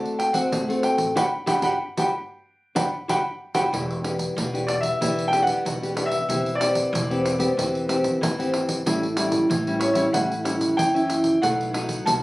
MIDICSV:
0, 0, Header, 1, 5, 480
1, 0, Start_track
1, 0, Key_signature, 1, "major"
1, 0, Tempo, 641026
1, 877, Time_signature, 4, 2, 24, 8
1, 2798, Key_signature, 1, "minor"
1, 9157, End_track
2, 0, Start_track
2, 0, Title_t, "Grand piano"
2, 0, Program_c, 0, 0
2, 0, Note_on_c, 0, 81, 95
2, 141, Note_on_c, 0, 79, 86
2, 155, Note_off_c, 0, 81, 0
2, 249, Note_on_c, 0, 78, 84
2, 260, Note_off_c, 0, 79, 0
2, 629, Note_on_c, 0, 79, 82
2, 634, Note_off_c, 0, 78, 0
2, 856, Note_off_c, 0, 79, 0
2, 875, Note_on_c, 0, 83, 90
2, 877, Note_on_c, 0, 79, 89
2, 881, Note_on_c, 0, 78, 94
2, 952, Note_off_c, 0, 83, 0
2, 954, Note_off_c, 0, 79, 0
2, 956, Note_off_c, 0, 78, 0
2, 1107, Note_on_c, 0, 83, 90
2, 1110, Note_on_c, 0, 79, 92
2, 1113, Note_on_c, 0, 78, 93
2, 1188, Note_off_c, 0, 83, 0
2, 1190, Note_off_c, 0, 79, 0
2, 1192, Note_off_c, 0, 78, 0
2, 1220, Note_on_c, 0, 83, 84
2, 1221, Note_on_c, 0, 78, 93
2, 1223, Note_on_c, 0, 79, 91
2, 1304, Note_off_c, 0, 78, 0
2, 1304, Note_off_c, 0, 83, 0
2, 1305, Note_off_c, 0, 79, 0
2, 1491, Note_on_c, 0, 78, 75
2, 1492, Note_on_c, 0, 79, 87
2, 1493, Note_on_c, 0, 83, 80
2, 1562, Note_off_c, 0, 78, 0
2, 1563, Note_off_c, 0, 79, 0
2, 1564, Note_off_c, 0, 83, 0
2, 2065, Note_on_c, 0, 78, 89
2, 2070, Note_on_c, 0, 79, 82
2, 2070, Note_on_c, 0, 83, 83
2, 2147, Note_off_c, 0, 78, 0
2, 2150, Note_off_c, 0, 79, 0
2, 2150, Note_off_c, 0, 83, 0
2, 2317, Note_on_c, 0, 83, 93
2, 2320, Note_on_c, 0, 78, 96
2, 2320, Note_on_c, 0, 79, 99
2, 2394, Note_off_c, 0, 83, 0
2, 2396, Note_off_c, 0, 78, 0
2, 2396, Note_off_c, 0, 79, 0
2, 2655, Note_on_c, 0, 79, 95
2, 2656, Note_on_c, 0, 83, 80
2, 2657, Note_on_c, 0, 78, 90
2, 2741, Note_off_c, 0, 79, 0
2, 2741, Note_off_c, 0, 83, 0
2, 2742, Note_off_c, 0, 78, 0
2, 3495, Note_on_c, 0, 74, 80
2, 3532, Note_off_c, 0, 74, 0
2, 3599, Note_on_c, 0, 76, 91
2, 3952, Note_off_c, 0, 76, 0
2, 3952, Note_on_c, 0, 79, 92
2, 4063, Note_on_c, 0, 78, 89
2, 4099, Note_off_c, 0, 79, 0
2, 4536, Note_on_c, 0, 76, 95
2, 4540, Note_off_c, 0, 78, 0
2, 4907, Note_on_c, 0, 74, 89
2, 4938, Note_off_c, 0, 76, 0
2, 5622, Note_off_c, 0, 74, 0
2, 7334, Note_on_c, 0, 73, 85
2, 7439, Note_on_c, 0, 76, 71
2, 7468, Note_off_c, 0, 73, 0
2, 7477, Note_off_c, 0, 76, 0
2, 7584, Note_on_c, 0, 78, 77
2, 8064, Note_on_c, 0, 79, 93
2, 8084, Note_off_c, 0, 78, 0
2, 8550, Note_on_c, 0, 78, 90
2, 8563, Note_off_c, 0, 79, 0
2, 9027, Note_on_c, 0, 81, 81
2, 9046, Note_off_c, 0, 78, 0
2, 9157, Note_off_c, 0, 81, 0
2, 9157, End_track
3, 0, Start_track
3, 0, Title_t, "Nylon-string guitar"
3, 0, Program_c, 1, 24
3, 0, Note_on_c, 1, 50, 48
3, 0, Note_on_c, 1, 57, 65
3, 0, Note_on_c, 1, 60, 69
3, 0, Note_on_c, 1, 66, 61
3, 228, Note_off_c, 1, 57, 0
3, 231, Note_off_c, 1, 60, 0
3, 231, Note_off_c, 1, 66, 0
3, 255, Note_on_c, 1, 57, 56
3, 255, Note_on_c, 1, 60, 65
3, 258, Note_on_c, 1, 66, 70
3, 373, Note_off_c, 1, 50, 0
3, 387, Note_on_c, 1, 45, 59
3, 467, Note_off_c, 1, 60, 0
3, 468, Note_off_c, 1, 57, 0
3, 469, Note_off_c, 1, 66, 0
3, 510, Note_on_c, 1, 57, 63
3, 514, Note_on_c, 1, 60, 69
3, 519, Note_on_c, 1, 66, 69
3, 848, Note_off_c, 1, 45, 0
3, 855, Note_off_c, 1, 57, 0
3, 856, Note_off_c, 1, 60, 0
3, 859, Note_off_c, 1, 66, 0
3, 864, Note_on_c, 1, 62, 84
3, 867, Note_on_c, 1, 66, 90
3, 869, Note_on_c, 1, 67, 94
3, 946, Note_off_c, 1, 62, 0
3, 948, Note_off_c, 1, 66, 0
3, 948, Note_off_c, 1, 67, 0
3, 1095, Note_on_c, 1, 62, 97
3, 1097, Note_on_c, 1, 67, 91
3, 1099, Note_on_c, 1, 66, 90
3, 1181, Note_off_c, 1, 62, 0
3, 1181, Note_off_c, 1, 67, 0
3, 1183, Note_off_c, 1, 66, 0
3, 1212, Note_on_c, 1, 62, 89
3, 1218, Note_on_c, 1, 66, 92
3, 1218, Note_on_c, 1, 67, 92
3, 1300, Note_off_c, 1, 62, 0
3, 1300, Note_off_c, 1, 66, 0
3, 1302, Note_off_c, 1, 67, 0
3, 1476, Note_on_c, 1, 62, 90
3, 1480, Note_on_c, 1, 66, 79
3, 1480, Note_on_c, 1, 67, 91
3, 1554, Note_off_c, 1, 62, 0
3, 1554, Note_off_c, 1, 66, 0
3, 1556, Note_off_c, 1, 67, 0
3, 2060, Note_on_c, 1, 62, 92
3, 2063, Note_on_c, 1, 66, 84
3, 2063, Note_on_c, 1, 67, 93
3, 2143, Note_off_c, 1, 67, 0
3, 2145, Note_off_c, 1, 62, 0
3, 2145, Note_off_c, 1, 66, 0
3, 2307, Note_on_c, 1, 62, 85
3, 2309, Note_on_c, 1, 66, 98
3, 2314, Note_on_c, 1, 67, 89
3, 2388, Note_off_c, 1, 62, 0
3, 2390, Note_off_c, 1, 66, 0
3, 2390, Note_off_c, 1, 67, 0
3, 2654, Note_on_c, 1, 62, 80
3, 2656, Note_on_c, 1, 66, 90
3, 2656, Note_on_c, 1, 67, 93
3, 2741, Note_off_c, 1, 62, 0
3, 2741, Note_off_c, 1, 66, 0
3, 2741, Note_off_c, 1, 67, 0
3, 2790, Note_on_c, 1, 52, 51
3, 2792, Note_on_c, 1, 59, 55
3, 2797, Note_on_c, 1, 62, 54
3, 2798, Note_on_c, 1, 67, 57
3, 2998, Note_off_c, 1, 59, 0
3, 2998, Note_off_c, 1, 62, 0
3, 2998, Note_off_c, 1, 67, 0
3, 3025, Note_on_c, 1, 59, 57
3, 3025, Note_on_c, 1, 62, 51
3, 3029, Note_on_c, 1, 67, 65
3, 3250, Note_off_c, 1, 52, 0
3, 3275, Note_on_c, 1, 47, 53
3, 3353, Note_off_c, 1, 59, 0
3, 3353, Note_off_c, 1, 62, 0
3, 3354, Note_off_c, 1, 67, 0
3, 3396, Note_on_c, 1, 59, 63
3, 3397, Note_on_c, 1, 62, 62
3, 3398, Note_on_c, 1, 67, 60
3, 3718, Note_off_c, 1, 62, 0
3, 3719, Note_off_c, 1, 59, 0
3, 3720, Note_off_c, 1, 67, 0
3, 3732, Note_off_c, 1, 47, 0
3, 3750, Note_on_c, 1, 52, 59
3, 3754, Note_on_c, 1, 59, 53
3, 3754, Note_on_c, 1, 62, 56
3, 3756, Note_on_c, 1, 67, 57
3, 3957, Note_off_c, 1, 59, 0
3, 3958, Note_off_c, 1, 62, 0
3, 3958, Note_off_c, 1, 67, 0
3, 3990, Note_on_c, 1, 59, 55
3, 3994, Note_on_c, 1, 62, 56
3, 3996, Note_on_c, 1, 67, 64
3, 4076, Note_off_c, 1, 59, 0
3, 4076, Note_off_c, 1, 62, 0
3, 4078, Note_off_c, 1, 67, 0
3, 4096, Note_on_c, 1, 59, 61
3, 4101, Note_on_c, 1, 62, 53
3, 4101, Note_on_c, 1, 67, 68
3, 4210, Note_off_c, 1, 52, 0
3, 4237, Note_on_c, 1, 47, 53
3, 4308, Note_off_c, 1, 59, 0
3, 4311, Note_off_c, 1, 62, 0
3, 4311, Note_off_c, 1, 67, 0
3, 4357, Note_on_c, 1, 59, 58
3, 4361, Note_on_c, 1, 62, 71
3, 4365, Note_on_c, 1, 67, 71
3, 4439, Note_off_c, 1, 59, 0
3, 4440, Note_off_c, 1, 62, 0
3, 4443, Note_off_c, 1, 67, 0
3, 4462, Note_on_c, 1, 59, 62
3, 4467, Note_on_c, 1, 62, 56
3, 4471, Note_on_c, 1, 67, 61
3, 4624, Note_off_c, 1, 59, 0
3, 4627, Note_off_c, 1, 62, 0
3, 4628, Note_off_c, 1, 67, 0
3, 4693, Note_off_c, 1, 47, 0
3, 4709, Note_on_c, 1, 59, 50
3, 4711, Note_on_c, 1, 52, 50
3, 4714, Note_on_c, 1, 60, 58
3, 4718, Note_on_c, 1, 67, 55
3, 4854, Note_off_c, 1, 59, 0
3, 4856, Note_off_c, 1, 60, 0
3, 4857, Note_off_c, 1, 67, 0
3, 4942, Note_on_c, 1, 59, 54
3, 4948, Note_on_c, 1, 60, 59
3, 4952, Note_on_c, 1, 67, 66
3, 5170, Note_off_c, 1, 52, 0
3, 5175, Note_off_c, 1, 59, 0
3, 5176, Note_off_c, 1, 60, 0
3, 5179, Note_off_c, 1, 67, 0
3, 5184, Note_on_c, 1, 52, 49
3, 5317, Note_on_c, 1, 59, 64
3, 5321, Note_on_c, 1, 60, 64
3, 5325, Note_on_c, 1, 67, 59
3, 5519, Note_off_c, 1, 59, 0
3, 5520, Note_off_c, 1, 60, 0
3, 5522, Note_off_c, 1, 67, 0
3, 5530, Note_on_c, 1, 59, 62
3, 5534, Note_on_c, 1, 60, 68
3, 5537, Note_on_c, 1, 67, 65
3, 5625, Note_off_c, 1, 59, 0
3, 5627, Note_off_c, 1, 60, 0
3, 5628, Note_off_c, 1, 67, 0
3, 5646, Note_off_c, 1, 52, 0
3, 5668, Note_on_c, 1, 52, 50
3, 5668, Note_on_c, 1, 59, 49
3, 5674, Note_on_c, 1, 60, 54
3, 5678, Note_on_c, 1, 67, 61
3, 5873, Note_off_c, 1, 59, 0
3, 5876, Note_off_c, 1, 60, 0
3, 5879, Note_off_c, 1, 67, 0
3, 5902, Note_on_c, 1, 59, 55
3, 5905, Note_on_c, 1, 60, 59
3, 5909, Note_on_c, 1, 67, 64
3, 6128, Note_off_c, 1, 52, 0
3, 6149, Note_on_c, 1, 52, 56
3, 6231, Note_off_c, 1, 59, 0
3, 6231, Note_off_c, 1, 60, 0
3, 6234, Note_off_c, 1, 67, 0
3, 6278, Note_on_c, 1, 59, 59
3, 6282, Note_on_c, 1, 60, 64
3, 6285, Note_on_c, 1, 67, 74
3, 6599, Note_off_c, 1, 59, 0
3, 6599, Note_off_c, 1, 60, 0
3, 6602, Note_off_c, 1, 67, 0
3, 6608, Note_off_c, 1, 52, 0
3, 6635, Note_on_c, 1, 55, 57
3, 6636, Note_on_c, 1, 45, 54
3, 6638, Note_on_c, 1, 61, 54
3, 6639, Note_on_c, 1, 64, 63
3, 6776, Note_off_c, 1, 55, 0
3, 6778, Note_off_c, 1, 61, 0
3, 6778, Note_off_c, 1, 64, 0
3, 6864, Note_on_c, 1, 55, 58
3, 6867, Note_on_c, 1, 61, 62
3, 6869, Note_on_c, 1, 64, 62
3, 7091, Note_off_c, 1, 45, 0
3, 7095, Note_off_c, 1, 55, 0
3, 7096, Note_off_c, 1, 61, 0
3, 7097, Note_off_c, 1, 64, 0
3, 7113, Note_on_c, 1, 52, 58
3, 7240, Note_on_c, 1, 55, 62
3, 7244, Note_on_c, 1, 61, 58
3, 7247, Note_on_c, 1, 64, 62
3, 7439, Note_off_c, 1, 55, 0
3, 7441, Note_off_c, 1, 61, 0
3, 7442, Note_off_c, 1, 64, 0
3, 7453, Note_on_c, 1, 55, 62
3, 7454, Note_on_c, 1, 61, 67
3, 7459, Note_on_c, 1, 64, 63
3, 7545, Note_off_c, 1, 61, 0
3, 7546, Note_off_c, 1, 55, 0
3, 7547, Note_off_c, 1, 64, 0
3, 7570, Note_off_c, 1, 52, 0
3, 7583, Note_on_c, 1, 45, 56
3, 7584, Note_on_c, 1, 55, 61
3, 7588, Note_on_c, 1, 61, 53
3, 7592, Note_on_c, 1, 64, 57
3, 7729, Note_off_c, 1, 55, 0
3, 7732, Note_off_c, 1, 61, 0
3, 7734, Note_off_c, 1, 64, 0
3, 7818, Note_on_c, 1, 55, 56
3, 7822, Note_on_c, 1, 61, 62
3, 7829, Note_on_c, 1, 64, 61
3, 8044, Note_off_c, 1, 45, 0
3, 8064, Note_on_c, 1, 52, 59
3, 8147, Note_off_c, 1, 55, 0
3, 8150, Note_off_c, 1, 61, 0
3, 8151, Note_off_c, 1, 64, 0
3, 8192, Note_on_c, 1, 61, 63
3, 8196, Note_on_c, 1, 64, 71
3, 8515, Note_off_c, 1, 61, 0
3, 8515, Note_off_c, 1, 64, 0
3, 8525, Note_off_c, 1, 52, 0
3, 8552, Note_on_c, 1, 47, 53
3, 8554, Note_on_c, 1, 54, 55
3, 8556, Note_on_c, 1, 57, 62
3, 8560, Note_on_c, 1, 63, 65
3, 8754, Note_off_c, 1, 54, 0
3, 8757, Note_off_c, 1, 57, 0
3, 8757, Note_off_c, 1, 63, 0
3, 8784, Note_on_c, 1, 54, 51
3, 8787, Note_on_c, 1, 57, 54
3, 8794, Note_on_c, 1, 63, 64
3, 9009, Note_off_c, 1, 47, 0
3, 9038, Note_on_c, 1, 42, 52
3, 9110, Note_off_c, 1, 54, 0
3, 9112, Note_off_c, 1, 57, 0
3, 9113, Note_off_c, 1, 63, 0
3, 9157, Note_off_c, 1, 42, 0
3, 9157, End_track
4, 0, Start_track
4, 0, Title_t, "Upright bass"
4, 0, Program_c, 2, 32
4, 0, Note_on_c, 2, 38, 75
4, 219, Note_off_c, 2, 38, 0
4, 254, Note_on_c, 2, 50, 80
4, 366, Note_off_c, 2, 50, 0
4, 388, Note_on_c, 2, 38, 82
4, 596, Note_off_c, 2, 38, 0
4, 731, Note_on_c, 2, 33, 87
4, 844, Note_off_c, 2, 33, 0
4, 865, Note_on_c, 2, 31, 83
4, 960, Note_off_c, 2, 31, 0
4, 1101, Note_on_c, 2, 31, 80
4, 1198, Note_off_c, 2, 31, 0
4, 1212, Note_on_c, 2, 31, 86
4, 1313, Note_off_c, 2, 31, 0
4, 1479, Note_on_c, 2, 31, 95
4, 1568, Note_off_c, 2, 31, 0
4, 2065, Note_on_c, 2, 31, 85
4, 2160, Note_off_c, 2, 31, 0
4, 2314, Note_on_c, 2, 31, 83
4, 2405, Note_off_c, 2, 31, 0
4, 2657, Note_on_c, 2, 31, 93
4, 2756, Note_off_c, 2, 31, 0
4, 2792, Note_on_c, 2, 28, 103
4, 3202, Note_off_c, 2, 28, 0
4, 3269, Note_on_c, 2, 28, 103
4, 3681, Note_off_c, 2, 28, 0
4, 3752, Note_on_c, 2, 28, 78
4, 4162, Note_off_c, 2, 28, 0
4, 4232, Note_on_c, 2, 28, 82
4, 4642, Note_off_c, 2, 28, 0
4, 4707, Note_on_c, 2, 28, 94
4, 5119, Note_off_c, 2, 28, 0
4, 5188, Note_on_c, 2, 28, 104
4, 5599, Note_off_c, 2, 28, 0
4, 5670, Note_on_c, 2, 28, 80
4, 6081, Note_off_c, 2, 28, 0
4, 6153, Note_on_c, 2, 32, 78
4, 6562, Note_off_c, 2, 32, 0
4, 6636, Note_on_c, 2, 33, 94
4, 7043, Note_off_c, 2, 33, 0
4, 7111, Note_on_c, 2, 33, 94
4, 7520, Note_off_c, 2, 33, 0
4, 7592, Note_on_c, 2, 33, 81
4, 8001, Note_off_c, 2, 33, 0
4, 8071, Note_on_c, 2, 42, 74
4, 8480, Note_off_c, 2, 42, 0
4, 8554, Note_on_c, 2, 35, 89
4, 8961, Note_off_c, 2, 35, 0
4, 9032, Note_on_c, 2, 35, 107
4, 9157, Note_off_c, 2, 35, 0
4, 9157, End_track
5, 0, Start_track
5, 0, Title_t, "Pandeiro"
5, 41, Note_on_c, 9, 54, 30
5, 116, Note_off_c, 9, 54, 0
5, 147, Note_on_c, 9, 54, 62
5, 222, Note_off_c, 9, 54, 0
5, 254, Note_on_c, 9, 54, 62
5, 329, Note_off_c, 9, 54, 0
5, 392, Note_on_c, 9, 54, 89
5, 467, Note_off_c, 9, 54, 0
5, 523, Note_on_c, 9, 54, 33
5, 598, Note_off_c, 9, 54, 0
5, 623, Note_on_c, 9, 54, 65
5, 698, Note_off_c, 9, 54, 0
5, 737, Note_on_c, 9, 54, 55
5, 811, Note_off_c, 9, 54, 0
5, 874, Note_on_c, 9, 54, 96
5, 949, Note_off_c, 9, 54, 0
5, 1102, Note_on_c, 9, 54, 99
5, 1177, Note_off_c, 9, 54, 0
5, 1215, Note_on_c, 9, 54, 81
5, 1290, Note_off_c, 9, 54, 0
5, 1478, Note_on_c, 9, 54, 85
5, 1553, Note_off_c, 9, 54, 0
5, 2067, Note_on_c, 9, 54, 98
5, 2142, Note_off_c, 9, 54, 0
5, 2317, Note_on_c, 9, 54, 99
5, 2392, Note_off_c, 9, 54, 0
5, 2655, Note_on_c, 9, 54, 96
5, 2730, Note_off_c, 9, 54, 0
5, 2798, Note_on_c, 9, 54, 77
5, 2873, Note_off_c, 9, 54, 0
5, 2925, Note_on_c, 9, 54, 36
5, 3000, Note_off_c, 9, 54, 0
5, 3029, Note_on_c, 9, 54, 71
5, 3103, Note_off_c, 9, 54, 0
5, 3139, Note_on_c, 9, 54, 59
5, 3214, Note_off_c, 9, 54, 0
5, 3278, Note_on_c, 9, 54, 74
5, 3353, Note_off_c, 9, 54, 0
5, 3405, Note_on_c, 9, 54, 32
5, 3480, Note_off_c, 9, 54, 0
5, 3508, Note_on_c, 9, 54, 63
5, 3583, Note_off_c, 9, 54, 0
5, 3617, Note_on_c, 9, 54, 51
5, 3692, Note_off_c, 9, 54, 0
5, 3757, Note_on_c, 9, 54, 76
5, 3832, Note_off_c, 9, 54, 0
5, 3883, Note_on_c, 9, 54, 33
5, 3958, Note_off_c, 9, 54, 0
5, 3990, Note_on_c, 9, 54, 58
5, 4065, Note_off_c, 9, 54, 0
5, 4097, Note_on_c, 9, 54, 58
5, 4172, Note_off_c, 9, 54, 0
5, 4239, Note_on_c, 9, 54, 80
5, 4314, Note_off_c, 9, 54, 0
5, 4368, Note_on_c, 9, 54, 34
5, 4443, Note_off_c, 9, 54, 0
5, 4469, Note_on_c, 9, 54, 70
5, 4544, Note_off_c, 9, 54, 0
5, 4579, Note_on_c, 9, 54, 55
5, 4654, Note_off_c, 9, 54, 0
5, 4714, Note_on_c, 9, 54, 76
5, 4789, Note_off_c, 9, 54, 0
5, 4839, Note_on_c, 9, 54, 32
5, 4914, Note_off_c, 9, 54, 0
5, 4949, Note_on_c, 9, 54, 72
5, 5024, Note_off_c, 9, 54, 0
5, 5057, Note_on_c, 9, 54, 56
5, 5132, Note_off_c, 9, 54, 0
5, 5205, Note_on_c, 9, 54, 75
5, 5280, Note_off_c, 9, 54, 0
5, 5326, Note_on_c, 9, 54, 29
5, 5401, Note_off_c, 9, 54, 0
5, 5433, Note_on_c, 9, 54, 59
5, 5508, Note_off_c, 9, 54, 0
5, 5540, Note_on_c, 9, 54, 54
5, 5615, Note_off_c, 9, 54, 0
5, 5681, Note_on_c, 9, 54, 73
5, 5756, Note_off_c, 9, 54, 0
5, 5805, Note_on_c, 9, 54, 31
5, 5880, Note_off_c, 9, 54, 0
5, 5910, Note_on_c, 9, 54, 62
5, 5985, Note_off_c, 9, 54, 0
5, 6022, Note_on_c, 9, 54, 56
5, 6097, Note_off_c, 9, 54, 0
5, 6163, Note_on_c, 9, 54, 91
5, 6238, Note_off_c, 9, 54, 0
5, 6289, Note_on_c, 9, 54, 33
5, 6363, Note_off_c, 9, 54, 0
5, 6392, Note_on_c, 9, 54, 64
5, 6467, Note_off_c, 9, 54, 0
5, 6505, Note_on_c, 9, 54, 59
5, 6580, Note_off_c, 9, 54, 0
5, 6638, Note_on_c, 9, 54, 77
5, 6713, Note_off_c, 9, 54, 0
5, 6763, Note_on_c, 9, 54, 31
5, 6838, Note_off_c, 9, 54, 0
5, 6864, Note_on_c, 9, 54, 77
5, 6939, Note_off_c, 9, 54, 0
5, 6977, Note_on_c, 9, 54, 59
5, 7052, Note_off_c, 9, 54, 0
5, 7118, Note_on_c, 9, 54, 74
5, 7193, Note_off_c, 9, 54, 0
5, 7242, Note_on_c, 9, 54, 31
5, 7317, Note_off_c, 9, 54, 0
5, 7343, Note_on_c, 9, 54, 68
5, 7418, Note_off_c, 9, 54, 0
5, 7453, Note_on_c, 9, 54, 58
5, 7527, Note_off_c, 9, 54, 0
5, 7594, Note_on_c, 9, 54, 82
5, 7669, Note_off_c, 9, 54, 0
5, 7725, Note_on_c, 9, 54, 33
5, 7800, Note_off_c, 9, 54, 0
5, 7828, Note_on_c, 9, 54, 73
5, 7903, Note_off_c, 9, 54, 0
5, 7944, Note_on_c, 9, 54, 58
5, 8019, Note_off_c, 9, 54, 0
5, 8079, Note_on_c, 9, 54, 79
5, 8154, Note_off_c, 9, 54, 0
5, 8209, Note_on_c, 9, 54, 30
5, 8284, Note_off_c, 9, 54, 0
5, 8309, Note_on_c, 9, 54, 60
5, 8384, Note_off_c, 9, 54, 0
5, 8415, Note_on_c, 9, 54, 54
5, 8490, Note_off_c, 9, 54, 0
5, 8561, Note_on_c, 9, 54, 74
5, 8636, Note_off_c, 9, 54, 0
5, 8692, Note_on_c, 9, 54, 37
5, 8767, Note_off_c, 9, 54, 0
5, 8794, Note_on_c, 9, 54, 69
5, 8869, Note_off_c, 9, 54, 0
5, 8901, Note_on_c, 9, 54, 58
5, 8976, Note_off_c, 9, 54, 0
5, 9039, Note_on_c, 9, 54, 73
5, 9114, Note_off_c, 9, 54, 0
5, 9157, End_track
0, 0, End_of_file